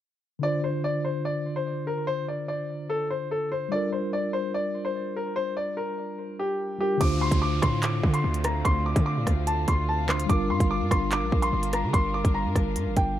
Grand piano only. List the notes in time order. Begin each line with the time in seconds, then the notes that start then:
0.43 D5
0.64 C5
0.84 D5
1.05 C5
1.25 D5
1.56 C5
1.87 A#4
2.07 C5
2.28 D5
2.48 D5
2.90 A4
3.10 C5
3.31 A4
3.52 C5
3.72 D5
3.92 C5
4.13 D5
4.33 C5
4.54 D5
4.85 C5
5.16 A#4
5.36 C5
5.57 D5
5.77 A#4
6.39 G4
6.80 G4
7.01 D6
7.21 C6
7.42 D6
7.62 C6
7.83 D6
8.14 C6
8.45 A#5
8.65 C6
8.86 D6
9.06 D6
9.47 A5
9.68 C6
9.89 A5
10.09 C6
10.29 D6
10.50 C6
10.71 D6
10.91 C6
11.12 D6
11.42 C6
11.74 A#5
11.93 C6
12.14 D6
12.34 A#5
12.97 G5